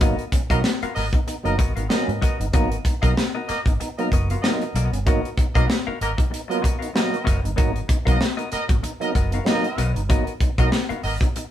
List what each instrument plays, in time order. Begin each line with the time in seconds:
0.00 fingered electric bass G#1, tonewheel organ F#3 A#3 B3 D#4, clean electric guitar B3 F#4 A#4 D#5, kick, closed hi-hat
0.19 closed hi-hat
0.32 tonewheel organ B3 C#4, muted clean electric guitar stroke, kick, closed hi-hat
0.50 fingered electric bass B1, tonewheel organ F#3 A#3 B3 D#4, horn section B3 A#4 D#5, clean electric guitar B3 F#4 A#4 F5, kick, closed hi-hat
0.64 snare
0.81 tonewheel organ B3 F4, clean electric guitar B3 F#4 A#4 F5, muted fingered electric bass stroke, closed hi-hat
0.95 fingered electric bass G#1, horn section B3 A#4 D#5, muted clean electric guitar stroke, snare, open hi-hat
1.13 tonewheel organ B3 D#4, muted clean electric guitar stroke, kick, closed hi-hat
1.27 tonewheel organ B3 D#4, muted clean electric guitar stroke, closed hi-hat
1.43 fingered electric bass F#1, tonewheel organ F#3 A#3 B3 D#4, horn section B3 A#4 D#5, muted clean electric guitar stroke, closed hi-hat
1.58 fingered electric bass G#1, clean electric guitar B3 F#4 A#4 D#5, kick, closed hi-hat
1.76 fingered electric bass G#1, clean electric guitar B3 F#4 A#4 F5, tonewheel organ B3 D#4, closed hi-hat
1.89 tonewheel organ F#3 A#3 B3 C#4, horn section B3 A#4 D#5, muted clean electric guitar stroke, snare
2.07 fingered electric bass G#2, muted clean electric guitar stroke, closed hi-hat
2.21 clean electric guitar B3 F#4 A#4 D#5, kick, closed hi-hat
2.40 fingered electric bass G1, tonewheel organ B3 D#4, muted clean electric guitar stroke, closed hi-hat
2.53 fingered electric bass G#1, tonewheel organ F#3 A#3 B3 D#4, clean electric guitar B3 F#4 A#4 D#5, kick, closed hi-hat
2.72 closed hi-hat
2.85 tonewheel organ B3 D#4, muted clean electric guitar stroke, kick, closed hi-hat
3.01 fingered electric bass B1, tonewheel organ F#3 A#3 B3 D#4, horn section B3 A#4 D#5, clean electric guitar B3 F#4 A#4 F5, kick, closed hi-hat
3.17 snare
3.35 tonewheel organ B3 D#4, clean electric guitar B3 F#4 A#4 D#5
3.47 horn section B3 A#4 D#5, muted fingered electric bass stroke, muted clean electric guitar stroke, snare, closed hi-hat
3.66 fingered electric bass G#1, tonewheel organ B3 D#4, muted clean electric guitar stroke, kick, closed hi-hat
3.80 tonewheel organ B3 D#4, muted clean electric guitar stroke, closed hi-hat
3.98 tonewheel organ F#3 A#3 B3 D#4, horn section B3 A#4 D#5, muted clean electric guitar stroke, closed hi-hat
4.12 fingered electric bass F#1, clean electric guitar B3 F#4 A#4 D#5, kick, closed hi-hat
4.30 tonewheel organ B3 F4, clean electric guitar B3 F#4 A#4 F5, closed hi-hat
4.42 tonewheel organ F#3 A#3 B3 D#4, horn section B3 A#4 D#5, muted clean electric guitar stroke, snare
4.62 muted clean electric guitar stroke, closed hi-hat
4.74 fingered electric bass B1, clean electric guitar B3 F#4 A#4 D#5, closed hi-hat
4.92 fingered electric bass G1, tonewheel organ B3 C#4, muted clean electric guitar stroke, closed hi-hat
5.06 fingered electric bass G#1, tonewheel organ F#3 A#3 B3 D#4, clean electric guitar B3 F#4 A#4 D#5, kick, closed hi-hat
5.25 closed hi-hat
5.37 tonewheel organ B3 D#4, muted clean electric guitar stroke, kick, closed hi-hat
5.54 fingered electric bass B1, tonewheel organ F#3 A#3 B3 D#4, horn section B3 A#4 D#5, clean electric guitar B3 F#4 A#4 F5, kick, closed hi-hat
5.69 muted clean electric guitar stroke, snare
5.87 tonewheel organ B3 D#4, clean electric guitar B3 F#4 A#4 F5, muted fingered electric bass stroke
6.00 fingered electric bass G#1, horn section B3 A#4 D#5, muted clean electric guitar stroke, closed hi-hat
6.18 tonewheel organ B3 D#4, muted clean electric guitar stroke, kick, closed hi-hat
6.31 tonewheel organ B3 D#4, muted clean electric guitar stroke, closed hi-hat
6.48 tonewheel organ F#3 A#3 B3 F4, horn section B3 A#4 D#5, muted clean electric guitar stroke, closed hi-hat
6.62 clean electric guitar B3 F#4 A#4 D#5, kick, closed hi-hat
6.79 clean electric guitar B3 F#4 A#4 F5, tonewheel organ B3 D#4, closed hi-hat
6.94 tonewheel organ F#3 A#3 B3 F#4, horn section B3 A#4 D#5, muted clean electric guitar stroke, snare
7.11 muted clean electric guitar stroke, closed hi-hat
7.24 fingered electric bass F#1, clean electric guitar B3 F#4 A#4 D#5, kick, closed hi-hat
7.42 fingered electric bass G1, tonewheel organ B3 D#4, muted clean electric guitar stroke, closed hi-hat
7.56 fingered electric bass G#1, tonewheel organ F#3 A#3 B3 D#4, clean electric guitar B3 F#4 A#4 D#5, kick, closed hi-hat
7.76 closed hi-hat
7.88 tonewheel organ B3 D#4, muted clean electric guitar stroke, kick, closed hi-hat
8.05 fingered electric bass B1, tonewheel organ F#3 A#3 B3 D#4, clean electric guitar B3 F#4 A#4 F5, horn section B3 A#4 D#5, kick, closed hi-hat
8.20 muted clean electric guitar stroke, snare
8.37 tonewheel organ B3 D#4, clean electric guitar B3 F#4 A#4 D#5, closed hi-hat
8.52 horn section B3 A#4 D#5, muted clean electric guitar stroke, muted fingered electric bass stroke, snare, closed hi-hat
8.68 fingered electric bass G#1, tonewheel organ B3 F#4, muted clean electric guitar stroke, kick, closed hi-hat
8.82 tonewheel organ B3 D#4, muted clean electric guitar stroke, closed hi-hat
9.00 tonewheel organ F#3 A#3 B3 D#4, horn section B3 A#4 D#5, muted clean electric guitar stroke, closed hi-hat
9.15 fingered electric bass F#1, clean electric guitar B3 F#4 A#4 D#5, kick, closed hi-hat
9.31 tonewheel organ B3 D#4, clean electric guitar B3 F#4 A#4 F5, closed hi-hat
9.45 tonewheel organ F#3 A#3 B3 D#4, horn section B3 A#4 D#5, muted clean electric guitar stroke, snare
9.63 muted clean electric guitar stroke, closed hi-hat
9.78 fingered electric bass B1, clean electric guitar B3 F#4 A#4 D#5, closed hi-hat
9.95 fingered electric bass G1, tonewheel organ B3 D#4, muted clean electric guitar stroke, closed hi-hat
10.09 fingered electric bass G#1, tonewheel organ F#3 A#3 B3 D#4, clean electric guitar B3 F#4 A#4 D#5, kick, closed hi-hat
10.27 closed hi-hat
10.40 tonewheel organ B3 D#4, muted clean electric guitar stroke, kick, closed hi-hat
10.58 fingered electric bass B1, tonewheel organ F#3 A#3 B3 D#4, horn section B3 A#4 D#5, clean electric guitar B3 F#4 A#4 F5, kick, closed hi-hat
10.72 muted clean electric guitar stroke, snare
10.89 clean electric guitar B3 F#4 A#4 F5, tonewheel organ B3 D#4, muted fingered electric bass stroke, closed hi-hat
11.03 fingered electric bass G#1, horn section B3 A#4 D#5, muted clean electric guitar stroke, open hi-hat
11.21 tonewheel organ B3 D#4, muted clean electric guitar stroke, kick, closed hi-hat
11.36 tonewheel organ B3 D#4, muted clean electric guitar stroke, closed hi-hat